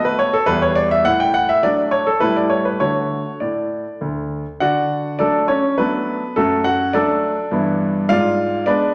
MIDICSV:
0, 0, Header, 1, 2, 480
1, 0, Start_track
1, 0, Key_signature, 2, "major"
1, 0, Tempo, 576369
1, 878, Time_signature, 3, 2, 24, 8
1, 1845, Tempo, 592885
1, 5205, Tempo, 573614
1, 7361, End_track
2, 0, Start_track
2, 0, Title_t, "Grand piano"
2, 0, Program_c, 0, 0
2, 0, Note_on_c, 0, 57, 54
2, 0, Note_on_c, 0, 59, 53
2, 0, Note_on_c, 0, 66, 61
2, 40, Note_on_c, 0, 71, 90
2, 157, Note_on_c, 0, 73, 97
2, 161, Note_off_c, 0, 71, 0
2, 268, Note_off_c, 0, 57, 0
2, 269, Note_off_c, 0, 59, 0
2, 271, Note_off_c, 0, 66, 0
2, 278, Note_off_c, 0, 73, 0
2, 278, Note_on_c, 0, 69, 87
2, 385, Note_on_c, 0, 71, 103
2, 389, Note_on_c, 0, 55, 55
2, 393, Note_on_c, 0, 40, 81
2, 396, Note_on_c, 0, 59, 56
2, 398, Note_off_c, 0, 69, 0
2, 404, Note_on_c, 0, 64, 58
2, 512, Note_off_c, 0, 71, 0
2, 517, Note_on_c, 0, 73, 92
2, 629, Note_on_c, 0, 74, 102
2, 638, Note_off_c, 0, 73, 0
2, 753, Note_off_c, 0, 74, 0
2, 760, Note_on_c, 0, 76, 98
2, 839, Note_off_c, 0, 55, 0
2, 843, Note_off_c, 0, 59, 0
2, 847, Note_off_c, 0, 64, 0
2, 860, Note_off_c, 0, 40, 0
2, 874, Note_on_c, 0, 78, 110
2, 879, Note_off_c, 0, 76, 0
2, 880, Note_on_c, 0, 45, 80
2, 996, Note_off_c, 0, 78, 0
2, 999, Note_on_c, 0, 79, 93
2, 1115, Note_on_c, 0, 78, 97
2, 1120, Note_off_c, 0, 79, 0
2, 1238, Note_off_c, 0, 78, 0
2, 1240, Note_on_c, 0, 76, 100
2, 1348, Note_off_c, 0, 45, 0
2, 1359, Note_on_c, 0, 74, 96
2, 1361, Note_off_c, 0, 76, 0
2, 1364, Note_on_c, 0, 54, 54
2, 1368, Note_on_c, 0, 57, 51
2, 1370, Note_on_c, 0, 62, 61
2, 1505, Note_off_c, 0, 74, 0
2, 1594, Note_on_c, 0, 73, 92
2, 1711, Note_off_c, 0, 54, 0
2, 1714, Note_off_c, 0, 57, 0
2, 1715, Note_off_c, 0, 62, 0
2, 1719, Note_off_c, 0, 73, 0
2, 1720, Note_on_c, 0, 69, 75
2, 1835, Note_on_c, 0, 71, 90
2, 1840, Note_on_c, 0, 55, 51
2, 1841, Note_on_c, 0, 45, 72
2, 1843, Note_off_c, 0, 69, 0
2, 1848, Note_on_c, 0, 57, 52
2, 1854, Note_on_c, 0, 64, 55
2, 1959, Note_off_c, 0, 71, 0
2, 1965, Note_on_c, 0, 74, 78
2, 2072, Note_on_c, 0, 73, 83
2, 2084, Note_off_c, 0, 74, 0
2, 2198, Note_on_c, 0, 71, 71
2, 2199, Note_off_c, 0, 73, 0
2, 2291, Note_off_c, 0, 55, 0
2, 2295, Note_off_c, 0, 57, 0
2, 2297, Note_off_c, 0, 64, 0
2, 2309, Note_off_c, 0, 45, 0
2, 2319, Note_on_c, 0, 73, 85
2, 2322, Note_off_c, 0, 71, 0
2, 2322, Note_on_c, 0, 57, 45
2, 2323, Note_on_c, 0, 50, 58
2, 2324, Note_on_c, 0, 66, 46
2, 2664, Note_off_c, 0, 50, 0
2, 2713, Note_off_c, 0, 57, 0
2, 2714, Note_off_c, 0, 66, 0
2, 2806, Note_on_c, 0, 74, 61
2, 2809, Note_off_c, 0, 73, 0
2, 2814, Note_on_c, 0, 45, 54
2, 3154, Note_off_c, 0, 45, 0
2, 3295, Note_off_c, 0, 74, 0
2, 3299, Note_on_c, 0, 38, 58
2, 3638, Note_off_c, 0, 38, 0
2, 3779, Note_on_c, 0, 78, 89
2, 3785, Note_on_c, 0, 50, 63
2, 3790, Note_on_c, 0, 74, 67
2, 3791, Note_on_c, 0, 66, 70
2, 4229, Note_off_c, 0, 66, 0
2, 4229, Note_off_c, 0, 74, 0
2, 4244, Note_off_c, 0, 50, 0
2, 4251, Note_on_c, 0, 74, 83
2, 4256, Note_off_c, 0, 78, 0
2, 4256, Note_on_c, 0, 54, 46
2, 4259, Note_on_c, 0, 62, 62
2, 4260, Note_on_c, 0, 57, 50
2, 4260, Note_on_c, 0, 69, 64
2, 4479, Note_off_c, 0, 62, 0
2, 4479, Note_off_c, 0, 69, 0
2, 4488, Note_on_c, 0, 73, 83
2, 4491, Note_off_c, 0, 74, 0
2, 4498, Note_on_c, 0, 61, 63
2, 4598, Note_off_c, 0, 54, 0
2, 4601, Note_off_c, 0, 57, 0
2, 4705, Note_off_c, 0, 73, 0
2, 4718, Note_off_c, 0, 61, 0
2, 4728, Note_on_c, 0, 71, 82
2, 4734, Note_on_c, 0, 54, 50
2, 4738, Note_on_c, 0, 57, 48
2, 4738, Note_on_c, 0, 59, 66
2, 4741, Note_on_c, 0, 62, 58
2, 5073, Note_off_c, 0, 54, 0
2, 5076, Note_off_c, 0, 57, 0
2, 5078, Note_off_c, 0, 62, 0
2, 5175, Note_off_c, 0, 59, 0
2, 5202, Note_off_c, 0, 71, 0
2, 5202, Note_on_c, 0, 69, 83
2, 5208, Note_on_c, 0, 42, 68
2, 5212, Note_on_c, 0, 57, 66
2, 5215, Note_on_c, 0, 66, 67
2, 5420, Note_off_c, 0, 69, 0
2, 5432, Note_off_c, 0, 57, 0
2, 5434, Note_off_c, 0, 66, 0
2, 5438, Note_on_c, 0, 78, 94
2, 5448, Note_on_c, 0, 66, 70
2, 5671, Note_off_c, 0, 66, 0
2, 5674, Note_off_c, 0, 42, 0
2, 5680, Note_on_c, 0, 74, 93
2, 5683, Note_off_c, 0, 78, 0
2, 5685, Note_on_c, 0, 54, 54
2, 5690, Note_on_c, 0, 57, 53
2, 5690, Note_on_c, 0, 62, 70
2, 5691, Note_on_c, 0, 69, 68
2, 6034, Note_off_c, 0, 54, 0
2, 6037, Note_off_c, 0, 57, 0
2, 6166, Note_on_c, 0, 43, 76
2, 6170, Note_on_c, 0, 52, 55
2, 6173, Note_on_c, 0, 59, 52
2, 6178, Note_on_c, 0, 64, 57
2, 6616, Note_off_c, 0, 52, 0
2, 6618, Note_off_c, 0, 59, 0
2, 6618, Note_off_c, 0, 62, 0
2, 6619, Note_off_c, 0, 69, 0
2, 6620, Note_off_c, 0, 64, 0
2, 6633, Note_off_c, 0, 43, 0
2, 6644, Note_off_c, 0, 74, 0
2, 6648, Note_on_c, 0, 77, 106
2, 6653, Note_on_c, 0, 44, 76
2, 6657, Note_on_c, 0, 65, 77
2, 6657, Note_on_c, 0, 74, 85
2, 7097, Note_off_c, 0, 65, 0
2, 7097, Note_off_c, 0, 74, 0
2, 7114, Note_off_c, 0, 44, 0
2, 7125, Note_on_c, 0, 74, 90
2, 7126, Note_off_c, 0, 77, 0
2, 7129, Note_on_c, 0, 56, 51
2, 7133, Note_on_c, 0, 71, 72
2, 7134, Note_on_c, 0, 59, 53
2, 7136, Note_on_c, 0, 62, 72
2, 7340, Note_off_c, 0, 74, 0
2, 7352, Note_off_c, 0, 71, 0
2, 7353, Note_off_c, 0, 62, 0
2, 7361, Note_off_c, 0, 56, 0
2, 7361, Note_off_c, 0, 59, 0
2, 7361, End_track
0, 0, End_of_file